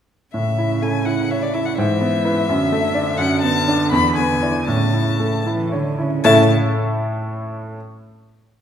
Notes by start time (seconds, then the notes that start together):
0.34 A2 C#3 E5
0.58 E4
0.82 A3 G#5
1.06 E4 F#5
1.31 C#5 E5
1.42 D5
1.54 E4 E5
1.66 F#5
1.78 G#2 E3 E5
2.01 B3
2.25 E4 B4
2.48 F#2 D3
2.72 A3
2.94 D4 D5
3.18 F#2 F#5
3.41 B3 A5
3.68 D4 D5
3.92 E2 B5
4.16 B3 G#5
4.42 E4 D5
4.67 A2 C#3 A5
4.94 E4
5.20 A3
5.46 E3 E4
5.72 D3 C#5
5.98 C#3 E4
6.24 A2 C#3 A3 E4 C#5 E5 A5